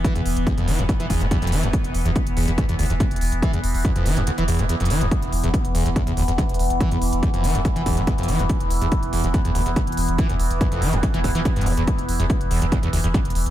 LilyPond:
<<
  \new Staff \with { instrumentName = "Synth drone" } { \clef bass \time 4/4 \key c \major \tempo 4 = 142 <e b>1~ | <e b>1~ | <e b>1 | <e b>1~ |
<e b>1~ | <e b>1~ | <e b>1~ | <e b>1 | }
  \new Staff \with { instrumentName = "Acid bass" } { \clef bass \time 4/4 \key c \major e16 e,16 r8 e,16 f,16 e16 e,16 d,16 e16 e,16 a,16 e,16 f,16 e16 e,16 | r8. e,16 r8 e,16 e,16 e,16 e,16 d,16 e,16 g,16 r8. | e16 e,16 r8 e,16 f,16 e16 e,16 d,16 e16 e,16 a,16 e,16 f,16 e16 e,16 | r8. e,16 r8 e,16 e,16 e,16 e,16 d,16 e,16 g,16 r8. |
e16 e,16 r8 e,16 f,16 e16 e,16 d,16 e16 e,16 a,16 e,16 f,16 e16 e,16 | r8. e,16 r8 e,16 e,16 e,16 e,16 d,16 e,16 g,16 r8. | e16 e,16 r8 e,16 f,16 e16 e,16 d,16 e16 g,16 e16 e,16 g,16 e,16 e,16 | r8. e,16 r8 e,16 e,16 e,16 e,16 d,16 e,16 g,16 r8. | }
  \new Staff \with { instrumentName = "Sub bass" } { \clef bass \time 4/4 \key c \major r16 e,,16 e,,16 e,,16 r16 e,,16 e,,16 e,,16 r16 e,,16 e,,16 e,,16 r16 e,,16 e,,16 e,,16 | r16 e,,16 e,,16 e,,16 r16 e,,16 e,,16 e,,16 r16 e,,16 e,,16 e,,16 r16 e,,16 e,,16 e,,16 | r16 e,,16 e,,16 e,,16 r16 e,,16 e,,16 e,,16 r16 e,,16 e,,16 e,,16 r16 e,,16 e,,16 e,,16 | r16 e,,16 e,,16 e,,16 r16 e,,16 e,,16 e,,16 r16 e,,16 e,,16 e,,16 r16 e,,16 e,,16 e,,16 |
r16 e,,16 e,,16 e,,16 r16 e,,16 e,,16 e,,16 r16 e,,16 e,,16 e,,16 r16 e,,16 e,,16 e,,16 | r16 e,,16 e,,16 e,,16 r16 e,,16 e,,16 e,,16 r16 e,,16 e,,16 e,,16 r16 e,,16 e,,16 e,,16 | r16 e,,16 e,,16 e,,16 r16 e,,16 e,,16 e,,16 r16 e,,16 e,,16 e,,16 r16 e,,16 e,,16 e,,16 | r16 e,,16 e,,16 e,,16 r16 e,,16 e,,16 e,,16 r16 e,,16 e,,16 e,,16 r16 e,,16 e,,16 e,,16 | }
  \new DrumStaff \with { instrumentName = "Drums" } \drummode { \time 4/4 <hh bd>16 hh16 hho16 hh16 <hh bd>16 hh16 hho16 hh16 <hh bd>16 hh16 <hho bd>16 hh16 <hh bd>16 hh32 hh32 hho16 hh16 | <hh bd>16 hh16 hho16 hh16 <hh bd>16 hh16 hho16 hh16 <hh bd>16 hh16 hho16 hh16 <hh bd>16 hh32 hh32 hho16 hh16 | <hh bd>16 hh16 hho16 hho16 <hh bd>16 hh16 hho16 hh16 hh16 hh16 hho16 hh16 hh16 hh32 hh32 hho16 hh16 | <hh bd>16 hh16 hho16 hh16 <hh bd>16 hh16 hho16 hh16 <hh bd>16 hh16 hho16 hh16 <hh bd>16 hh32 hh32 hho16 hh16 |
<hh bd>16 hh16 hho16 hh16 <hh bd>16 hh16 hho16 hh16 <hh bd>16 hh16 <hho bd>16 hh16 <hh bd>16 hh32 hh32 hho16 hh16 | <hh bd>16 hh16 hho16 hh16 <hh bd>16 hh16 hho16 hh16 <hh bd>16 hh16 hho16 hh16 <hh bd>16 hh32 hh32 hho16 hh16 | <hh bd>16 hh16 hho16 hh16 <hh bd>16 hh16 hho16 hh16 <hh bd>16 hh16 <hho bd>16 hh16 <hh bd>16 hh32 hh32 hho16 hh16 | <hh bd>16 hh16 hho16 hh16 <hh bd>16 hh16 hho16 hh16 <hh bd>16 hh16 hho16 hh16 <hh bd>16 hh32 hh32 hho16 hh16 | }
>>